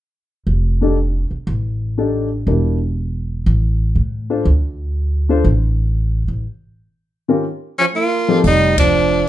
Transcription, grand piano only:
0, 0, Header, 1, 2, 480
1, 0, Start_track
1, 0, Tempo, 497925
1, 455, Time_signature, 4, 2, 24, 8
1, 8954, End_track
2, 0, Start_track
2, 0, Title_t, "Grand piano"
2, 0, Program_c, 0, 0
2, 783, Note_on_c, 0, 62, 48
2, 792, Note_on_c, 0, 63, 46
2, 792, Note_on_c, 0, 67, 47
2, 797, Note_on_c, 0, 69, 53
2, 921, Note_off_c, 0, 62, 0
2, 925, Note_off_c, 0, 63, 0
2, 925, Note_off_c, 0, 67, 0
2, 928, Note_off_c, 0, 69, 0
2, 1906, Note_on_c, 0, 62, 50
2, 1912, Note_on_c, 0, 63, 44
2, 1912, Note_on_c, 0, 67, 44
2, 1914, Note_on_c, 0, 69, 53
2, 2193, Note_off_c, 0, 62, 0
2, 2196, Note_off_c, 0, 63, 0
2, 2196, Note_off_c, 0, 67, 0
2, 2197, Note_off_c, 0, 69, 0
2, 2383, Note_on_c, 0, 62, 38
2, 2387, Note_on_c, 0, 64, 38
2, 2390, Note_on_c, 0, 67, 34
2, 2391, Note_on_c, 0, 70, 43
2, 2672, Note_off_c, 0, 62, 0
2, 2674, Note_off_c, 0, 64, 0
2, 2675, Note_off_c, 0, 67, 0
2, 2675, Note_off_c, 0, 70, 0
2, 4145, Note_on_c, 0, 62, 51
2, 4146, Note_on_c, 0, 65, 50
2, 4148, Note_on_c, 0, 69, 49
2, 4155, Note_on_c, 0, 72, 58
2, 4283, Note_off_c, 0, 62, 0
2, 4283, Note_off_c, 0, 65, 0
2, 4284, Note_off_c, 0, 69, 0
2, 4287, Note_off_c, 0, 72, 0
2, 5101, Note_on_c, 0, 62, 57
2, 5105, Note_on_c, 0, 65, 54
2, 5112, Note_on_c, 0, 69, 53
2, 5114, Note_on_c, 0, 72, 69
2, 5241, Note_off_c, 0, 62, 0
2, 5243, Note_off_c, 0, 65, 0
2, 5246, Note_off_c, 0, 69, 0
2, 5247, Note_off_c, 0, 72, 0
2, 7022, Note_on_c, 0, 51, 56
2, 7024, Note_on_c, 0, 61, 48
2, 7027, Note_on_c, 0, 65, 50
2, 7031, Note_on_c, 0, 67, 48
2, 7031, Note_on_c, 0, 70, 57
2, 7161, Note_off_c, 0, 51, 0
2, 7163, Note_off_c, 0, 61, 0
2, 7164, Note_off_c, 0, 65, 0
2, 7166, Note_off_c, 0, 67, 0
2, 7166, Note_off_c, 0, 70, 0
2, 7986, Note_on_c, 0, 53, 58
2, 7987, Note_on_c, 0, 60, 51
2, 7989, Note_on_c, 0, 63, 52
2, 7992, Note_on_c, 0, 67, 55
2, 7994, Note_on_c, 0, 69, 68
2, 8123, Note_off_c, 0, 53, 0
2, 8124, Note_off_c, 0, 60, 0
2, 8125, Note_off_c, 0, 63, 0
2, 8127, Note_off_c, 0, 67, 0
2, 8127, Note_off_c, 0, 69, 0
2, 8954, End_track
0, 0, End_of_file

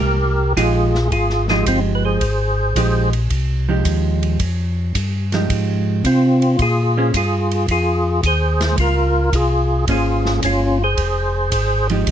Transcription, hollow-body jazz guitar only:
0, 0, Header, 1, 2, 480
1, 0, Start_track
1, 0, Key_signature, -4, "minor"
1, 0, Tempo, 547445
1, 17, Time_signature, 4, 2, 24, 8
1, 10619, End_track
2, 0, Start_track
2, 0, Title_t, "Hollow-body jazz guitar"
2, 0, Program_c, 0, 26
2, 499, Note_on_c, 0, 53, 60
2, 503, Note_on_c, 0, 56, 63
2, 503, Note_on_c, 0, 63, 61
2, 507, Note_on_c, 0, 67, 63
2, 793, Note_off_c, 0, 53, 0
2, 795, Note_off_c, 0, 56, 0
2, 796, Note_off_c, 0, 63, 0
2, 797, Note_off_c, 0, 67, 0
2, 1316, Note_on_c, 0, 53, 59
2, 1319, Note_on_c, 0, 56, 63
2, 1322, Note_on_c, 0, 63, 66
2, 1328, Note_on_c, 0, 67, 67
2, 1912, Note_off_c, 0, 53, 0
2, 1913, Note_off_c, 0, 56, 0
2, 1915, Note_off_c, 0, 63, 0
2, 1917, Note_off_c, 0, 67, 0
2, 2423, Note_on_c, 0, 53, 54
2, 2426, Note_on_c, 0, 56, 58
2, 2430, Note_on_c, 0, 63, 50
2, 2434, Note_on_c, 0, 67, 62
2, 2716, Note_off_c, 0, 53, 0
2, 2717, Note_off_c, 0, 56, 0
2, 2719, Note_off_c, 0, 63, 0
2, 2721, Note_off_c, 0, 67, 0
2, 3232, Note_on_c, 0, 53, 65
2, 3237, Note_on_c, 0, 56, 63
2, 3237, Note_on_c, 0, 63, 60
2, 3244, Note_on_c, 0, 67, 70
2, 3830, Note_off_c, 0, 53, 0
2, 3833, Note_off_c, 0, 56, 0
2, 3833, Note_off_c, 0, 63, 0
2, 3836, Note_off_c, 0, 67, 0
2, 4680, Note_on_c, 0, 53, 57
2, 4685, Note_on_c, 0, 63, 60
2, 4686, Note_on_c, 0, 56, 54
2, 4690, Note_on_c, 0, 67, 62
2, 5275, Note_off_c, 0, 53, 0
2, 5277, Note_off_c, 0, 63, 0
2, 5278, Note_off_c, 0, 56, 0
2, 5280, Note_off_c, 0, 67, 0
2, 6114, Note_on_c, 0, 58, 51
2, 6120, Note_on_c, 0, 61, 58
2, 6124, Note_on_c, 0, 68, 58
2, 6125, Note_on_c, 0, 72, 60
2, 6247, Note_off_c, 0, 58, 0
2, 6250, Note_off_c, 0, 61, 0
2, 6252, Note_off_c, 0, 68, 0
2, 6253, Note_off_c, 0, 72, 0
2, 8669, Note_on_c, 0, 58, 47
2, 8673, Note_on_c, 0, 61, 49
2, 8676, Note_on_c, 0, 68, 51
2, 8678, Note_on_c, 0, 72, 51
2, 9408, Note_off_c, 0, 58, 0
2, 9409, Note_off_c, 0, 61, 0
2, 9411, Note_off_c, 0, 68, 0
2, 9412, Note_off_c, 0, 72, 0
2, 10436, Note_on_c, 0, 53, 62
2, 10442, Note_on_c, 0, 56, 64
2, 10447, Note_on_c, 0, 63, 64
2, 10449, Note_on_c, 0, 67, 63
2, 10619, Note_off_c, 0, 53, 0
2, 10619, Note_off_c, 0, 56, 0
2, 10619, Note_off_c, 0, 63, 0
2, 10619, Note_off_c, 0, 67, 0
2, 10619, End_track
0, 0, End_of_file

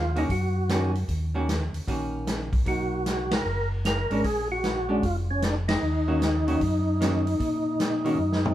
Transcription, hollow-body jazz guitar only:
0, 0, Header, 1, 2, 480
1, 0, Start_track
1, 0, Key_signature, -6, "minor"
1, 0, Tempo, 394737
1, 1317, Time_signature, 4, 2, 24, 8
1, 10388, End_track
2, 0, Start_track
2, 0, Title_t, "Hollow-body jazz guitar"
2, 0, Program_c, 0, 26
2, 191, Note_on_c, 0, 51, 70
2, 195, Note_on_c, 0, 58, 69
2, 203, Note_on_c, 0, 61, 74
2, 207, Note_on_c, 0, 66, 71
2, 340, Note_off_c, 0, 51, 0
2, 342, Note_off_c, 0, 58, 0
2, 346, Note_off_c, 0, 61, 0
2, 349, Note_off_c, 0, 66, 0
2, 848, Note_on_c, 0, 51, 57
2, 851, Note_on_c, 0, 58, 62
2, 857, Note_on_c, 0, 61, 65
2, 863, Note_on_c, 0, 66, 70
2, 1124, Note_off_c, 0, 51, 0
2, 1126, Note_off_c, 0, 58, 0
2, 1128, Note_off_c, 0, 61, 0
2, 1132, Note_off_c, 0, 66, 0
2, 1636, Note_on_c, 0, 51, 65
2, 1644, Note_on_c, 0, 61, 73
2, 1645, Note_on_c, 0, 58, 65
2, 1651, Note_on_c, 0, 66, 75
2, 1783, Note_off_c, 0, 51, 0
2, 1787, Note_off_c, 0, 58, 0
2, 1787, Note_off_c, 0, 61, 0
2, 1790, Note_off_c, 0, 66, 0
2, 2279, Note_on_c, 0, 51, 51
2, 2286, Note_on_c, 0, 58, 54
2, 2290, Note_on_c, 0, 66, 59
2, 2292, Note_on_c, 0, 61, 56
2, 3009, Note_off_c, 0, 51, 0
2, 3012, Note_off_c, 0, 58, 0
2, 3014, Note_off_c, 0, 66, 0
2, 3015, Note_off_c, 0, 61, 0
2, 3230, Note_on_c, 0, 54, 45
2, 3239, Note_on_c, 0, 58, 43
2, 3248, Note_on_c, 0, 63, 45
2, 3964, Note_off_c, 0, 54, 0
2, 3969, Note_off_c, 0, 58, 0
2, 3973, Note_off_c, 0, 63, 0
2, 4993, Note_on_c, 0, 56, 56
2, 5005, Note_on_c, 0, 61, 61
2, 5005, Note_on_c, 0, 62, 55
2, 5142, Note_off_c, 0, 56, 0
2, 5148, Note_off_c, 0, 61, 0
2, 5148, Note_off_c, 0, 62, 0
2, 5943, Note_on_c, 0, 56, 59
2, 5950, Note_on_c, 0, 61, 59
2, 5956, Note_on_c, 0, 62, 60
2, 6097, Note_off_c, 0, 56, 0
2, 6101, Note_off_c, 0, 61, 0
2, 6104, Note_off_c, 0, 62, 0
2, 7389, Note_on_c, 0, 51, 62
2, 7395, Note_on_c, 0, 58, 63
2, 7395, Note_on_c, 0, 61, 66
2, 7396, Note_on_c, 0, 66, 72
2, 7540, Note_off_c, 0, 51, 0
2, 7542, Note_off_c, 0, 58, 0
2, 7543, Note_off_c, 0, 61, 0
2, 7543, Note_off_c, 0, 66, 0
2, 7869, Note_on_c, 0, 51, 71
2, 7876, Note_on_c, 0, 58, 64
2, 7882, Note_on_c, 0, 61, 73
2, 7883, Note_on_c, 0, 66, 71
2, 8020, Note_off_c, 0, 51, 0
2, 8023, Note_off_c, 0, 58, 0
2, 8026, Note_off_c, 0, 61, 0
2, 8026, Note_off_c, 0, 66, 0
2, 8517, Note_on_c, 0, 51, 54
2, 8522, Note_on_c, 0, 58, 60
2, 8523, Note_on_c, 0, 61, 58
2, 8531, Note_on_c, 0, 66, 58
2, 8798, Note_off_c, 0, 51, 0
2, 8801, Note_off_c, 0, 58, 0
2, 8801, Note_off_c, 0, 61, 0
2, 8805, Note_off_c, 0, 66, 0
2, 9782, Note_on_c, 0, 51, 70
2, 9787, Note_on_c, 0, 58, 71
2, 9795, Note_on_c, 0, 61, 69
2, 9798, Note_on_c, 0, 66, 77
2, 9935, Note_off_c, 0, 51, 0
2, 9937, Note_off_c, 0, 58, 0
2, 9941, Note_off_c, 0, 61, 0
2, 9943, Note_off_c, 0, 66, 0
2, 10388, End_track
0, 0, End_of_file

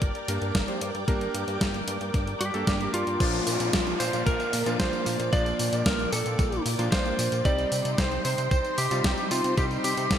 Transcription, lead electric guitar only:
0, 0, Header, 1, 2, 480
1, 0, Start_track
1, 0, Key_signature, -2, "major"
1, 0, Tempo, 530973
1, 976, Time_signature, 4, 2, 24, 8
1, 9206, End_track
2, 0, Start_track
2, 0, Title_t, "Lead electric guitar"
2, 0, Program_c, 0, 29
2, 2175, Note_on_c, 0, 67, 89
2, 2622, Note_off_c, 0, 67, 0
2, 2655, Note_on_c, 0, 65, 91
2, 3615, Note_on_c, 0, 72, 97
2, 3644, Note_off_c, 0, 65, 0
2, 3851, Note_off_c, 0, 72, 0
2, 3854, Note_on_c, 0, 70, 107
2, 4302, Note_off_c, 0, 70, 0
2, 4335, Note_on_c, 0, 72, 108
2, 4816, Note_on_c, 0, 74, 121
2, 4830, Note_off_c, 0, 72, 0
2, 5297, Note_on_c, 0, 70, 108
2, 5311, Note_off_c, 0, 74, 0
2, 5534, Note_off_c, 0, 70, 0
2, 5537, Note_on_c, 0, 69, 92
2, 5983, Note_off_c, 0, 69, 0
2, 6257, Note_on_c, 0, 72, 97
2, 6737, Note_on_c, 0, 74, 108
2, 6751, Note_off_c, 0, 72, 0
2, 7219, Note_on_c, 0, 72, 100
2, 7231, Note_off_c, 0, 74, 0
2, 7440, Note_off_c, 0, 72, 0
2, 7457, Note_on_c, 0, 72, 91
2, 7686, Note_off_c, 0, 72, 0
2, 7696, Note_on_c, 0, 72, 106
2, 7938, Note_on_c, 0, 67, 95
2, 7943, Note_off_c, 0, 72, 0
2, 8414, Note_off_c, 0, 67, 0
2, 8418, Note_on_c, 0, 65, 85
2, 8640, Note_off_c, 0, 65, 0
2, 8657, Note_on_c, 0, 67, 105
2, 8721, Note_off_c, 0, 67, 0
2, 8897, Note_on_c, 0, 67, 96
2, 9206, Note_off_c, 0, 67, 0
2, 9206, End_track
0, 0, End_of_file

